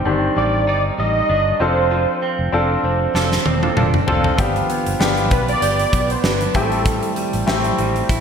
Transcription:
Already playing: G3 C4 D4 D#4 G4
0.05 G1 D#3 C4 D4 G4
0.36 A1 G3 D5
0.67 G1 D#4 D5
0.98 A1 G3 D#5
1.29 G1 D4
1.60 F1 F3 C4 D4 F4 A4 C5
1.91 F3
2.22 C4
2.39 F1
2.52 F1 C4 D4 F4 A4
2.84 F1 C4
3.14 F1 D4 F4 A4, snare
3.32 snare
3.46 E1 C4, high tom
3.63 D4 F4 A4, high tom
3.77 F1 D4 F4 A4, mid tom
3.94 mid tom
4.07 F1 C4 D4 F4 A4, floor tom
4.24 floor tom
4.38 G1 F3 B3 D4 F4 G4, kick, closed hi-hat
4.56 closed hi-hat
4.70 B3, closed hi-hat
4.86 G1, closed hi-hat
5.00 G1 B3 D4 F4 G4, snare
5.17 closed hi-hat
5.31 B1 B3 B4, kick, closed hi-hat
5.48 D5, closed hi-hat
5.62 G1 G4, closed hi-hat
5.79 closed hi-hat
5.93 B1 B3, kick, closed hi-hat
6.10 C5, closed hi-hat
6.24 G1 D4 B4, snare
6.41 closed hi-hat
6.54 A1 G3 A3 C4 E4 G4 A4, kick, closed hi-hat
6.72 closed hi-hat
6.86 G3, kick, closed hi-hat
7.03 closed hi-hat
7.16 G3, closed hi-hat
7.33 A1, closed hi-hat
7.47 A3 C4 E4 G4, snare
7.64 closed hi-hat
7.78 A1 G3, closed hi-hat
7.96 closed hi-hat
8.09 A1 E4, kick, closed hi-hat

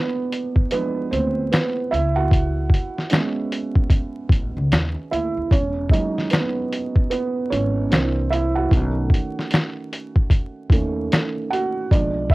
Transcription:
Already playing: F3 G#3 B3 D4 B4 D5
0.32 closed hi-hat
0.56 kick
0.71 F3 G#3 B3 D4 B4, closed hi-hat
1.11 D2 C4 C5, closed hi-hat
1.52 B3 B4, finger snap, snare, closed hi-hat
1.91 C#2 E4 E5, closed hi-hat
2.16 F#4 F#5
2.31 kick, closed hi-hat
2.70 kick
2.74 closed hi-hat
2.98 snare
3.10 G#3 B3 C#4, snare, closed hi-hat
3.14 finger snap
3.52 closed hi-hat
3.75 kick
3.90 kick, closed hi-hat
4.29 A1, kick, closed hi-hat
4.57 C#2
4.72 D#2, finger snap, snare, closed hi-hat
5.11 D2 E4 E5, closed hi-hat
5.37 D#2
5.51 E1 C#4 C#5, kick, closed hi-hat
5.89 F#3 G#3 D#4 D#5, kick, closed hi-hat
6.18 snare
6.30 B3 B4, snare, closed hi-hat
6.35 finger snap
6.73 closed hi-hat
6.96 kick
7.10 B3 B4, closed hi-hat
7.50 G#1 C#4 C#5, closed hi-hat
7.91 C2 E3 A#3 C4 D4 C5, finger snap, snare, closed hi-hat
8.30 E4 E5, closed hi-hat
8.55 F#4 F#5
8.71 B1 D#3 A3 C#4, kick, closed hi-hat
9.10 kick
9.14 closed hi-hat
9.39 snare
9.51 snare, closed hi-hat
9.55 finger snap
9.93 closed hi-hat
10.16 kick
10.30 kick, closed hi-hat
10.70 D#2 D#3 A3 C#4, kick, closed hi-hat
11.12 finger snap, snare, closed hi-hat
11.51 F#4 F#5, closed hi-hat
11.91 B1 F3 G#3 D4 D5, kick, closed hi-hat
12.30 E5, kick

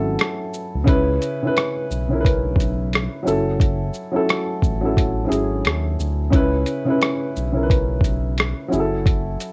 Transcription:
Already playing: G#1 F#3 C#4 E4 A4
0.19 cross-stick, closed hi-hat
0.54 shaker
0.75 D2
0.84 C#2 C#3 C#4 E4, kick, closed hi-hat
0.89 B4
1.22 closed hi-hat, shaker
1.42 C#3 C#4 E4
1.47 B4
1.57 cross-stick, closed hi-hat
1.91 B1, shaker
2.09 C#3 C#4 E4
2.13 A#4
2.20 B4
2.25 kick, closed hi-hat
2.56 B1, kick
2.60 closed hi-hat, shaker
2.93 cross-stick, closed hi-hat
3.23 F#3 C#4 E4
3.27 F#1 A4, shaker
3.60 kick, closed hi-hat
3.94 shaker
4.12 F#3 C#4 E4
4.16 A4
4.29 cross-stick, closed hi-hat
4.62 A1, kick, shaker
4.81 F#3 C#4 E4
4.86 A4
4.97 kick, closed hi-hat
5.25 F#3 C#4 E4
5.29 G#1 G#4, closed hi-hat, shaker
5.65 D#2, cross-stick, closed hi-hat
6.00 D2, shaker
6.30 C#2 C#3 C#4 E4, kick, closed hi-hat
6.35 B4
6.66 closed hi-hat, shaker
6.85 C#3 C#4 E4
6.90 B4
7.01 cross-stick, closed hi-hat
7.36 B1, shaker
7.52 C#3 C#4 E4
7.56 A#4
7.63 B4
7.70 kick, closed hi-hat
8.01 B1, kick, closed hi-hat, shaker
8.38 cross-stick, closed hi-hat
8.68 F#3 C#4 E4
8.72 F#1 G#4, shaker
8.80 A4
9.06 kick, closed hi-hat
9.40 closed hi-hat, shaker

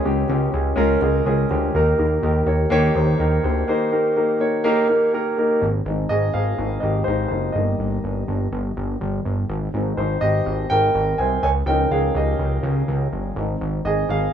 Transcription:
Already playing: C#3 G#3 C#4 F4 G4 G#4 A#4
0.03 C#2 G#3 C#4 F4 G4
0.28 C#2 G#3 C#4 F4 G4
0.52 C#2 G#3 C#4 F4 G#4
0.76 C#2 G#3 C#4 F4 A#4
1.01 C#2 G#3 C#4 F4 G#4
1.25 C#2 G#3 C#4 F4 G#4
1.50 D2 G#3 C#4 F4 G4
1.74 D#2 D#3 A#3 D#4 G4 A#4
1.98 D#2 A#3 D#4 G4 A#4
2.22 D#2 A#3 D#4 G4 A#4
2.46 D#2 A#3 D#4 G4 C#5
2.70 D#2 A#3 D#4 G4 C#5
2.94 D#2 A#3 D#4 G4 C5
3.18 D#2 A#3 D#4 G4 A#4
3.43 D2 A#3 D#4 G4 C5
3.68 D#3 A#3 D#4 G4 C5
3.91 A#3 D#4 G4 A#4
4.16 A#3 D#4 G4 A#4
4.39 A#3 D#4 G4 C#5
4.64 A#3 D#4 G4 A#4
4.88 A#3 D#4 G4 A#4
5.13 A#3 D#4 G4 A#4
5.37 A#3 D#4 G4 A#4
5.62 G#1
5.85 G#1 G#3 C4 D#4
6.09 G#1 G#4 D#5
6.34 G#1 G#4 F5
6.58 G#1 G#3 C4 D#4
6.80 G#1 G4 D#5
7.04 G#1 C5
7.08 D#4
7.28 F#1 D#4 C5
7.52 G1 G3 A#3 D#4 D#5
7.57 G4
7.79 G1
8.04 G1
8.28 G1
8.52 G1
8.77 G1
9.01 G1
9.25 G1
9.49 G#1
9.74 G#1 G#3 C4 D#4
9.97 G#1 D#4 C5
10.21 G#1 G4 D#5
10.46 G#1
10.70 G#1 A#4 G5
10.95 G#1
11.18 C2 C5 G#5
11.43 C#2 C#5 G#5
11.66 C#2 F3 C#4 D#4 A#4 G5
11.91 C#2 G#4 F5
12.15 C#2 G4 D#5
12.39 C#2
12.63 C#2
12.88 C#2
13.12 G1
13.36 G#1 G#3 C4 D#4
13.61 G#1
13.85 G#1 G#4 D#5
14.09 G#1 G#4 F5

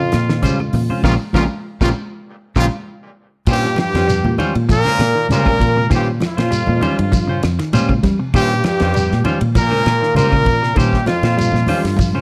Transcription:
Already playing: F2 F4
0.00 C#3
0.12 A#2, muted clean electric guitar stroke, snare, closed hi-hat, claves, shekere
0.29 D#3, snare
0.42 C#3 G3 C#4 F4 C5, kick, snare, closed hi-hat, high conga, shekere
0.59 C#3, muted clean electric guitar stroke, high conga, claves
0.73 A#2, muted clean electric guitar stroke, open hi-hat, low conga, shekere
0.90 C3 C#4 F4 C5, high conga
1.03 A#1 G2 A#2 C#3 F3 F4 G4 A#4, kick, snare, high conga, claves, shekere
1.07 F2 A#2 F4
1.33 A#1 F2 G2 A#2 C#3 F3 F4 G4 A#4, kick, snare, high conga, claves, shekere
1.81 A#1 F2 G2 A#2 C#3 F3 F4 G4 A#4, kick, snare, high conga, claves, shekere
2.56 A#1 F2 G2 A#2 C#3 F3 F4 G4 A#4, kick, snare, high conga, claves, shekere
3.46 G2 A#2 G3 C#4 F4 G4 C5, muted clean electric guitar stroke, kick, crash, claves, shekere
3.52 G4
3.65 snare
3.76 G2 F3 G4, muted clean electric guitar stroke, snare, ride bell, high conga, claves, shekere
3.81 G4
3.94 F2 C#4 F4 C5, snare, ride bell
4.08 G3, muted clean electric guitar stroke, snare, ride bell, shekere
4.24 A#2, muted clean electric guitar stroke, high conga, low conga
4.38 D#3 G3 C#4 F4 C5, ride bell, high conga, low conga, claves, shekere
4.55 A#2, muted clean electric guitar stroke, ride bell
4.69 A#2 F3 A#4, kick, ride bell, high conga, shekere
4.85 C#3 C#4 F4 C5, snare, high conga
4.99 A#2, muted clean electric guitar stroke, snare, ride bell, claves, shekere
5.15 D#3, muted clean electric guitar stroke
5.29 A#2 C#3 G3 C#4 F4 C5, snare, ride bell, high conga, shekere
5.33 A#4
5.45 C#3, kick, high conga, claves
5.59 A#2, muted clean electric guitar stroke, kick, ride bell, low conga, shekere
5.76 C3, muted clean electric guitar stroke, high conga
5.90 G2 A#2 D#3 G3 C#4 F4 C5, kick, ride bell, claves, shekere
5.95 G4
6.20 F3, muted clean electric guitar stroke, snare, ride bell, high conga, claves, shekere
6.25 F2 F4
6.37 A#2 C#4 F4 C5, snare, ride bell
6.51 G3, muted clean electric guitar stroke, ride bell, shekere
6.67 A#2, muted clean electric guitar stroke, high conga, low conga
6.81 D#3 G3 C#4 F4 C5, ride bell, high conga, low conga, claves, shekere
6.99 G2, muted clean electric guitar stroke, ride bell
7.12 F3, kick, ride bell, high conga, shekere
7.27 C#3 C#4 F4 C5
7.43 F2, muted clean electric guitar stroke, snare, ride bell, claves, shekere
7.59 D#3, muted clean electric guitar stroke, snare, ride bell
7.73 A#2 G3 C#4 F4 C5, ride bell, high conga, shekere
7.89 C#3, kick, high conga, claves
8.03 G3, muted clean electric guitar stroke, kick, snare, ride bell, low conga, shekere
8.19 C3, muted clean electric guitar stroke
8.34 G2 A#2 D#3 G3 C#4 F4 G4 C5, kick, ride bell, claves, shekere
8.64 G2 F3 G4, muted clean electric guitar stroke, snare, ride bell, high conga, claves, shekere
8.80 F2 C#4 F4 C5, snare, ride bell
8.94 G3, muted clean electric guitar stroke, ride bell, shekere
9.10 A#2, muted clean electric guitar stroke, snare, high conga
9.24 D#3 G3 C#4 F4 C5, ride bell, high conga, low conga, claves, shekere
9.41 A#2, muted clean electric guitar stroke, ride bell
9.55 A#2 F3 A#4, kick, ride bell, high conga, shekere
9.70 C#3 C#4 F4 C5, high conga
9.84 A#2, muted clean electric guitar stroke, snare, ride bell, claves
9.88 shekere
10.01 D#3, muted clean electric guitar stroke, snare
10.15 A#2 C#3 G3 F4 A#4 C5, muted clean electric guitar stroke, snare, ride bell, high conga, shekere
10.32 C#3, kick, claves
10.45 A#2, muted clean electric guitar stroke, kick, ride bell, low conga, shekere
10.62 C3, muted clean electric guitar stroke, snare
10.76 G2 A#2 D#3 G3 C#4 G4 C5, muted clean electric guitar stroke, kick, ride bell, claves, shekere
10.93 kick, snare
11.06 F2 F3 F4, muted clean electric guitar stroke, snare, ride bell, high conga, claves
11.10 shekere
11.23 A#2 F4 C5, snare, ride bell
11.37 G3, muted clean electric guitar stroke, ride bell, shekere
11.52 A#2, muted clean electric guitar stroke, snare, low conga
11.67 D#3 G3 C#4 F4 C5, open hi-hat, high conga, low conga, claves, shekere
11.83 G2, muted clean electric guitar stroke, snare, ride bell
11.96 F3, kick, ride bell, high conga, shekere
12.12 C#3 C#4 F4 C5, high conga

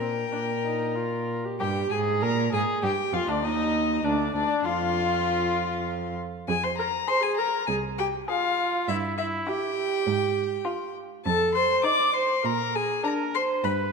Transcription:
Already playing: A#2 A#4 G5
0.01 C4
0.32 A#2 D4 A#4
0.64 D#4
0.95 F4
1.44 G4
1.60 G2 G4 G5
1.91 G#2 G#4 G#5
2.22 A#2 A#4 A#5
2.52 G#2 G#4 G#5
2.83 G2 G4 G5
3.13 F2 F4 F5
3.28 D2 D4 D5
3.43 D#2 D#4 D#5
4.04 D2 D4 D5
4.34 D2 D4 D5
4.64 F2 F4 F5
6.48 F2 G#4 G#5
6.63 C5 C6
6.78 A#4 A#5
7.08 G#4 C5 C6
7.23 G#4 G#5
7.37 A#4 A#5
7.67 C2 G#4 G#5
7.98 G4 G5
8.29 F4 G#4 F5
8.88 G2 E4 E5
9.18 E4 E5
9.47 E4 G4 G5
10.07 G#2
10.66 F4
11.25 F2 A4 A5
11.55 C5 C6
11.84 D#4 D5 D6
12.14 C5 C6
12.44 A#2 A#4 A#5
12.75 G#4 G#5
13.04 D4 A#4 A#5
13.34 C5 C6
13.64 G2 B4 B5

